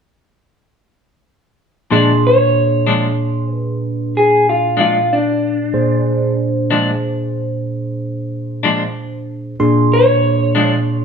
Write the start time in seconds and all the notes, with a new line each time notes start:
1.91 A#2 F3 G#3 D4 G#4 C6
2.27 C#5
2.87 A#2 F3 G#3 D4
3.53 B4
4.17 G#4
4.49 F4
4.77 A#2 F3 G#3 D4 F4
5.13 D4
5.74 A#2 D4 G#4 C5
6.71 A#2 F3 G#3 D4
8.63 A#2 F3 G#3 D4
9.60 A#2 D4 G#4 C6
9.93 C#5
10.55 A#2 F3 G#3 D4